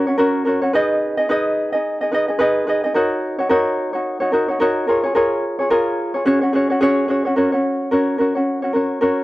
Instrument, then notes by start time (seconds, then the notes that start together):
ukulele
0.07 C#4 F#4 C#5
0.18 C#4 F#4 A#4 C#5
0.45 C#4 F#4 A#4 C#5
0.62 C#4 F#4 C#5
0.73 D#4 G#4 B4 D#5
1.17 D#4 G#4 D#5
1.29 D#4 G#4 B4 D#5
1.73 D#4 G#4 D#5
2.01 D#4 G#4 D#5
2.12 D#4 G#4 B4 D#5
2.28 D#4 G#4 D#5
2.39 D#4 G#4 B4 D#5
2.67 D#4 G#4 B4 D#5
2.84 D#4 G#4 D#5
2.94 D#4 F#4 A#4 C#5
3.39 D#4 F#4 C#5
3.49 D#4 F#4 A#4 C#5
3.93 D#4 F#4 C#5
4.20 D#4 F#4 C#5
4.32 D#4 F#4 A#4 C#5
4.48 D#4 F#4 C#5
4.60 D#4 F#4 A#4 C#5
4.87 F4 G#4 A#4 C#5
5.03 F4 G#4 C#5
5.15 F4 G#4 A#4 C#5
5.59 F4 G#4 C#5
5.70 F4 G#4 A#4 C#5
6.14 F4 G#4 C#5
6.25 C#4 F#4 G#4 C#5
6.41 C#4 F#4 C#5
6.53 C#4 F#4 G#4 C#5
6.70 C#4 F#4 C#5
6.80 C#4 F#4 G#4 C#5
7.08 C#4 F#4 G#4 C#5
7.25 C#4 F#4 C#5
7.36 C#4 F#4 A#4 C#5
7.52 C#4 F#4 C#5
7.91 C#4 F#4 A#4 C#5
8.18 C#4 F#4 A#4 C#5
8.35 C#4 F#4 C#5
8.62 C#4 F#4 C#5
8.73 C#4 F#4 A#4 C#5
9.01 C#4 F#4 A#4 C#5